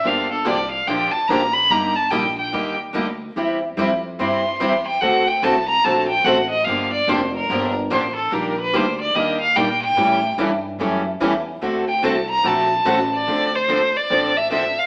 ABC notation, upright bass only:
X:1
M:4/4
L:1/8
Q:"Swing" 1/4=145
K:Gm
V:1 name="Upright bass" clef=bass
G,,,2 C,,2 B,,, z A,,,2 | G,,,2 B,,,2 E,,2 D,,2 | =E,,2 F,,2 G,,2 E,,2 | D,,2 C,,2 B,,,2 A,,,2 |
G,,,2 F,,,2 G,,,2 A,,,2 | B,,,2 D,,2 E,,2 B,,2 | A,,2 G,,2 ^F,,2 =E,,2 | D,,2 C,,2 B,,,2 A,,,2 |
[K:Dm] D,,4 A,,,4 |]